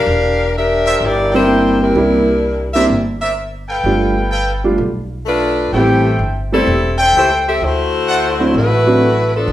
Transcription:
0.00 0.52 D4 medium
0.00 0.52 G4 medium
0.00 0.52 A#4 medium
0.00 0.52 F5 loud
0.06 0.97 E1 medium
0.56 1.02 D4 medium
0.56 1.02 G4 medium
0.56 1.03 A#4 medium
0.56 1.02 E5 medium
0.85 0.96 A#4 medium
0.85 0.96 C5 medium
0.85 0.96 D5 medium
0.85 0.96 E5 loud
1.00 1.91 G1 medium
1.00 1.33 A#3 medium
1.00 1.33 E4 medium
1.00 1.33 G4 medium
1.00 1.34 D5 medium
1.32 1.93 G3 medium
1.32 1.78 A#3 medium
1.32 1.93 A#3 medium
1.32 1.93 C4 medium
1.32 1.93 D4 medium
1.32 1.77 E4 medium
1.32 1.94 E4 medium
1.32 1.78 G4 medium
1.32 1.92 A#4 medium
1.32 1.92 C5 medium
1.32 1.77 C5 loud
1.32 1.92 D5 medium
1.32 1.92 G5 medium
1.82 2.75 G3 medium
1.82 2.75 D4 medium
1.82 2.75 E4 medium
1.82 2.75 A#4 medium
1.95 2.86 C2 medium
1.95 2.24 G3 medium
1.95 2.24 A#3 medium
1.95 2.24 C4 medium
1.95 2.24 D4 medium
1.95 2.24 E4 medium
2.73 2.89 G3 medium
2.73 2.89 A#3 medium
2.73 2.89 C4 medium
2.73 2.89 D4 medium
2.73 2.89 E4 medium
2.73 2.84 A#4 medium
2.73 2.84 C5 medium
2.73 2.84 D5 medium
2.73 2.84 E5 loud
2.89 3.80 G1 medium
3.21 3.32 A#4 medium
3.21 3.32 C5 medium
3.21 3.32 D5 medium
3.21 3.32 E5 medium
3.68 4.28 A4 medium
3.68 4.28 B4 medium
3.68 4.28 F5 medium
3.68 4.28 G5 medium
3.84 4.74 G1 medium
3.84 4.13 G3 medium
3.84 4.13 A3 medium
3.84 4.13 B3 medium
3.84 4.13 D4 medium
3.84 4.13 F4 medium
4.31 4.52 A4 medium
4.31 4.52 B4 medium
4.31 4.52 F5 medium
4.31 4.52 G5 loud
4.64 4.77 G3 medium
4.64 4.77 A3 medium
4.64 4.78 B3 medium
4.64 4.78 D4 medium
4.64 4.78 F4 medium
4.78 5.68 B1 medium
5.26 5.70 A3 medium
5.26 5.69 D4 medium
5.26 5.70 F4 medium
5.26 5.70 B4 loud
5.72 6.16 A1 medium
5.72 6.17 E3 medium
5.72 6.02 G3 medium
5.72 6.17 A3 medium
5.72 6.02 A3 soft
5.72 6.02 B3 soft
5.72 6.17 C4 medium
5.72 6.02 C4 soft
5.72 6.02 E4 medium
5.72 6.17 G4 medium
5.72 6.45 A4 medium
5.72 6.45 C5 medium
5.72 6.45 E5 medium
5.72 6.45 G5 medium
6.19 6.63 G1 medium
6.52 6.96 G3 medium
6.52 6.66 G3 medium
6.52 6.66 A3 medium
6.52 6.66 B3 medium
6.52 6.96 C4 medium
6.52 6.66 C4 medium
6.52 6.95 E4 medium
6.52 6.66 E4 medium
6.52 6.96 A4 loud
6.67 7.11 E1 medium
6.98 7.58 A4 medium
6.98 7.58 C5 medium
6.98 7.58 E5 medium
6.98 7.58 G5 loud
7.13 7.57 C#2 medium
7.13 7.30 A3 medium
7.13 7.30 E4 medium
7.13 7.30 G4 medium
7.13 7.30 C5 loud
7.47 7.61 C4 medium
7.47 7.61 G4 medium
7.47 7.61 A4 medium
7.47 7.61 E5 medium
7.61 8.51 D2 medium
7.61 8.55 A3 medium
7.61 8.55 E4 medium
7.61 8.55 F#4 medium
7.61 8.56 C5 medium
8.07 8.29 C5 medium
8.07 8.29 D5 medium
8.07 8.29 E5 medium
8.07 8.29 F#5 loud
8.40 8.54 F#3 medium
8.40 8.54 A3 medium
8.40 8.54 C4 medium
8.40 8.54 D4 medium
8.40 8.54 E4 medium
8.54 9.45 A1 medium
8.54 9.30 A3 medium
8.54 9.30 E4 medium
8.54 9.30 F#4 medium
8.54 9.31 B4 loud
8.87 9.01 F#3 medium
8.87 9.01 A3 medium
8.87 9.01 C4 medium
8.87 9.01 D4 medium
8.87 9.01 F#4 medium
9.34 9.52 F3 medium
9.34 9.52 B3 medium
9.34 9.52 D4 medium
9.34 9.52 A4 medium
9.48 9.52 G1 medium

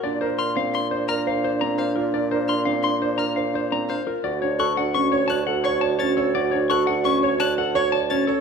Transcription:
0.04 4.13 A#2 medium
0.04 0.26 D4 medium
0.04 4.03 D4 medium
0.04 0.21 D5 medium
0.21 0.44 A#4 medium
0.21 0.44 C5 medium
0.38 0.61 C6 medium
0.38 0.52 F6 medium
0.57 0.79 C4 medium
0.57 0.79 F5 medium
0.74 0.87 C6 medium
0.74 0.97 C6 medium
0.91 1.14 C5 medium
0.91 1.14 D5 medium
1.08 1.31 A#4 medium
1.08 1.31 A#5 medium
1.08 1.21 F6 medium
1.27 1.49 C5 medium
1.27 1.49 F5 medium
1.44 1.67 C5 medium
1.44 1.67 D5 medium
1.61 1.84 C4 medium
1.61 1.84 A#5 medium
1.78 2.01 C5 medium
1.78 1.91 F5 medium
1.96 2.19 F4 medium
1.96 2.19 A#4 medium
2.14 2.37 D4 medium
2.14 2.31 D5 medium
2.31 2.54 A#4 medium
2.31 2.54 C5 medium
2.48 2.72 C6 medium
2.48 2.61 F6 medium
2.65 2.89 C4 medium
2.65 2.89 F5 medium
2.83 2.96 C6 medium
2.83 3.07 C6 medium
3.02 3.24 C5 medium
3.02 3.24 D5 medium
3.18 3.42 A#4 medium
3.18 3.41 A#5 medium
3.18 3.32 F6 medium
3.36 3.59 C5 medium
3.36 3.59 F5 medium
3.54 3.77 C5 medium
3.54 3.77 D5 medium
3.72 3.95 C4 medium
3.72 3.95 A#5 medium
3.89 4.12 C5 medium
3.89 4.02 F5 medium
4.07 4.30 F4 medium
4.07 4.30 A#4 medium
4.24 8.34 D2 medium
4.24 8.23 F#4 medium
4.24 4.47 F#4 medium
4.24 4.41 D5 medium
4.42 4.65 D4 medium
4.42 4.65 C#5 medium
4.59 4.82 A4 medium
4.59 4.82 C#6 medium
4.59 4.72 F#6 medium
4.77 5.00 D4 medium
4.77 5.00 F#5 medium
4.94 5.17 C#4 medium
4.94 5.07 C#6 medium
4.94 5.17 C#6 medium
5.12 5.35 C#5 medium
5.28 5.53 D5 medium
5.28 5.46 A5 medium
5.28 5.43 F#6 medium
5.47 5.70 A4 medium
5.47 5.70 F#5 medium
5.64 5.87 C#5 medium
5.64 5.88 C#5 medium
5.64 5.77 C#6 medium
5.81 6.05 D5 medium
5.81 6.05 A5 medium
5.99 6.23 C#4 medium
5.99 6.22 C#5 medium
5.99 6.13 A6 medium
6.17 6.40 A4 medium
6.17 6.40 C#5 medium
6.35 6.58 F#4 medium
6.35 6.58 D5 medium
6.51 6.75 D4 medium
6.51 6.75 C#5 medium
6.70 6.93 A4 medium
6.70 6.93 C#6 medium
6.70 6.83 F#6 medium
6.87 7.10 D4 medium
6.87 7.10 F#5 medium
7.04 7.28 C#4 medium
7.04 7.18 C#6 medium
7.04 7.28 C#6 medium
7.23 7.45 C#5 medium
7.23 7.46 C#5 medium
7.40 7.63 D5 medium
7.40 7.58 A5 loud
7.40 7.53 F#6 medium
7.58 7.81 A4 medium
7.58 7.81 F#5 medium
7.75 7.98 C#5 loud
7.75 7.98 C#5 medium
7.75 7.88 C#6 medium
7.92 8.16 D5 medium
7.92 8.15 A5 loud
8.10 8.33 C#4 medium
8.10 8.33 C#5 medium
8.10 8.23 A6 medium
8.27 8.40 A4 medium
8.27 8.40 C#5 medium

